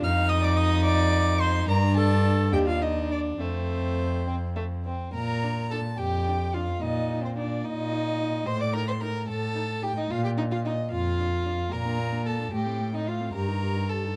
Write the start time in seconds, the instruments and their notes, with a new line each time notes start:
0.02 cello F2, violin D#4 F6, viola F5
0.29 viola D#5, violin D#6
0.43 viola D5, violin D6
0.56 viola D#5, violin D#6
0.84 viola D5, violin D6
1.40 viola C5, violin C6
1.68 cello G2, violin D4 A#5, viola A#4
1.97 viola A4, violin A5
2.52 cello D#2, violin D4 G5, viola G4
2.67 viola F4, violin F5
2.81 viola D#4, violin D#5
3.10 viola D4, violin D5
3.40 cello F2, violin A3 C5, viola C4
4.27 violin C4
4.56 violin A3
4.85 violin C4
5.14 cello A#2, violin A#4 A#5
5.43 viola D4
5.71 viola D4, violin A4 A5
5.98 cello F2, violin G4 G5
6.27 viola D4
6.54 viola D4, violin F4 F5
6.81 cello A#2, violin D#4 D#5
7.10 viola D#4
7.23 violin C4 C5
7.36 violin D4 D5, viola D#4
7.64 cello A#2, violin D#4 D#5
7.92 viola D#4
8.19 viola D#4
8.46 cello A2, violin C5 C6
8.60 violin D5 D6
8.74 viola D#4, violin A#4 A#5
8.88 violin C5 C6
9.01 viola D#4, violin A#4 A#5
9.28 cello A2, violin A4 A5
9.55 viola D#4
9.82 viola D#4, violin G4 G5
9.97 violin D#4 D#5
10.10 cello A#2, violin F4 F5
10.24 violin G4 G5
10.37 viola D4, violin D#4 D#5
10.51 violin F4 F5
10.64 viola D4, violin D#4 D#5
10.91 cello F2, violin F4 F5
11.18 viola D4
11.45 viola D4
11.72 cello A#2, viola A#3, violin A#4 A#5
11.86 viola D4
11.99 viola A#3
12.12 viola D4
12.25 viola A#3, violin A4 A5
12.39 viola D4
12.53 cello A2, viola A3, violin G4 G5
12.66 viola C4
12.80 viola A3
12.94 viola C4, violin D#4 D#5
13.07 viola A3, violin F4 F5
13.21 viola C4
13.33 cello G2, viola G4, violin A#4 A#5
13.48 viola D#4
13.61 viola G4
13.75 viola D#4
13.89 viola G4, violin A4 A5
14.04 viola D#4